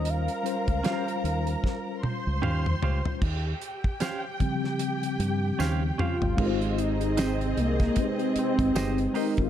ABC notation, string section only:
X:1
M:4/4
L:1/8
Q:"Swing 16ths" 1/4=76
K:Ebmix
V:1 name="String section"
[Bb]4- [Bb] [cc']3 | [Gg]8 | [CAe]8 |]